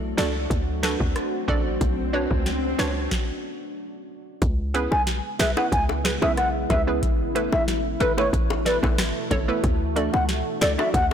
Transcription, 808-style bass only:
0.00 0.14 B1 medium
0.18 0.47 C#2 loud
0.50 0.96 D2 loud
1.00 1.14 D2 medium
1.48 1.78 A1 medium
1.81 2.27 B1 loud
2.31 2.75 C#2 medium
2.79 3.08 C#2 medium
4.42 4.88 C#2 loud
4.92 5.21 B1 medium
5.39 5.55 B1 loud
5.72 6.18 C#2 loud
6.22 6.66 B1 medium
6.70 7.04 C#2 medium
7.03 7.49 A1 loud
7.53 7.96 A1 medium
8.01 8.30 G#1 medium
8.33 8.79 A1 loud
8.83 9.12 A1 loud
9.31 9.47 G#1 medium
9.64 10.09 D2 loud
10.14 10.43 C#2 medium
10.62 10.77 C#2 loud
10.94 11.14 D2 loud

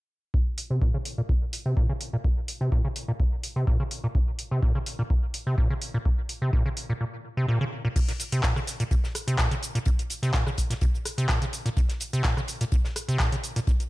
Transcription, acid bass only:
0.34 0.38 A#2 medium
0.70 0.80 C3 loud
0.82 0.92 A#2 loud
0.94 0.98 C#3 medium
1.18 1.22 A#2 loud
1.29 1.33 A#2 medium
1.66 1.75 C3 loud
1.77 1.87 A#2 loud
1.89 1.93 C#3 medium
2.13 2.17 A#2 loud
2.25 2.29 A#2 medium
2.61 2.70 C3 loud
2.72 2.83 A#2 loud
2.85 2.88 C#3 loud
3.08 3.12 A#2 loud
3.20 3.24 A#2 medium
3.56 3.65 C3 loud
3.67 3.78 A#2 loud
3.80 3.84 C#3 loud
4.04 4.07 A#2 loud
4.15 4.19 A#2 medium
4.51 4.61 C3 loud
4.63 4.73 A#2 loud
4.75 4.79 C#3 loud
4.99 5.03 A#2 loud
5.10 5.14 A#2 medium
5.47 5.56 C3 loud
5.58 5.68 A#2 medium
5.70 5.74 C#3 medium
5.94 5.98 A#2 loud
6.05 6.10 A#2 medium
6.42 6.51 C3 loud
6.53 6.63 A#2 loud
6.66 6.69 C#3 loud
6.90 6.93 A#2 medium
7.01 7.05 A#2 medium
7.37 7.46 C3 loud
7.48 7.59 A#2 loud
7.61 7.65 C#3 loud
7.85 7.88 A#2 loud
7.96 8.00 A#2 medium
8.32 8.42 C3 loud
8.44 8.54 A#2 loud
8.56 8.60 C#3 medium
8.80 8.84 A#2 medium
8.91 8.95 A#2 medium
9.28 9.37 C3 loud
9.39 9.49 A#2 loud
9.51 9.55 C#3 loud
9.75 9.79 A#2 loud
9.86 9.90 A#2 medium
10.23 10.32 C3 loud
10.47 10.50 C#3 loud
10.70 10.74 A#2 medium
10.81 10.86 A#2 medium
11.18 11.27 C3 loud
11.29 11.40 A#2 loud
11.42 11.45 C#3 loud
11.66 11.69 A#2 loud
11.77 11.81 A#2 medium
12.13 12.23 C3 loud
12.24 12.35 A#2 loud
12.37 12.41 C#3 loud
12.61 12.65 A#2 medium
12.72 12.76 A#2 medium
13.08 13.18 C3 loud
13.20 13.30 A#2 loud
13.32 13.36 C#3 loud
13.56 13.60 A#2 loud
13.67 13.71 A#2 medium

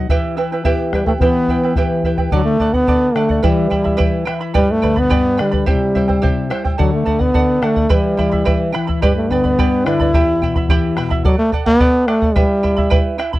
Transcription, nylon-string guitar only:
0.10 1.18 E3 medium
0.65 1.19 B3 soft
0.65 1.19 E4 soft
0.65 1.19 G4 soft
1.21 2.29 E3 medium
1.76 2.31 B3 soft
1.76 2.31 E4 soft
1.76 2.31 G4 medium
2.33 2.59 D3 medium
2.88 3.14 D3 medium
3.15 3.43 D3 soft
3.45 3.70 E3 medium
3.71 3.98 E3 medium
4.00 4.27 E3 medium
4.28 4.55 E3 soft
4.56 5.10 G2 medium
4.84 5.11 D3 medium
5.12 5.39 G2 medium
5.40 5.67 D3 soft
5.68 6.22 C3 medium
5.96 6.22 G3 medium
6.24 6.50 C3 medium
6.51 6.78 G3 soft
6.79 7.05 D3 medium
7.07 7.34 D3 medium
7.35 7.61 D3 medium
7.62 7.89 D3 soft
7.91 8.18 E3 medium
8.19 8.46 E3 medium
8.48 8.74 E3 medium
8.76 9.02 E3 soft
9.04 10.11 G2 medium
9.31 9.57 D3 medium
9.59 9.85 G3 medium
9.87 10.13 D3 soft
10.15 11.22 E2 medium
10.42 10.69 B2 medium
10.70 10.96 E3 medium
10.98 11.25 B2 soft

